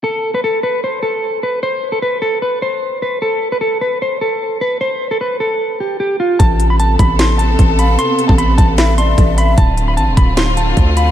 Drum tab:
HH |----------------|----------------|----------------|----------------|
CP |----------------|----------------|----------------|----------------|
SD |----------------|----------------|----------------|----------------|
BD |----------------|----------------|----------------|----------------|

HH |x-x-x-x-x-x-x-x-|x-x-x-x-x-x-x-x-|x-x-x-x-x-x-x-x-|
CP |--------x-------|--------x-------|--------x-------|
SD |--------o-------|--------o-------|--------o-------|
BD |o-----o-----o---|---o--o-----o---|o-----o-----o---|